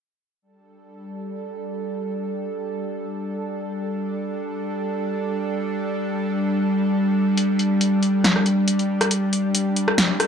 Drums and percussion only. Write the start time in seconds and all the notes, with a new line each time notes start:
7.37 closed hi-hat
7.59 closed hi-hat
7.81 closed hi-hat
8.03 closed hi-hat
8.24 snare, closed hi-hat
8.36 cross-stick
8.46 closed hi-hat
8.68 closed hi-hat
8.79 closed hi-hat
9.01 cross-stick, closed hi-hat
9.11 closed hi-hat
9.33 closed hi-hat
9.55 closed hi-hat
9.76 closed hi-hat
9.88 cross-stick
9.98 snare, closed hi-hat
10.20 cross-stick, closed hi-hat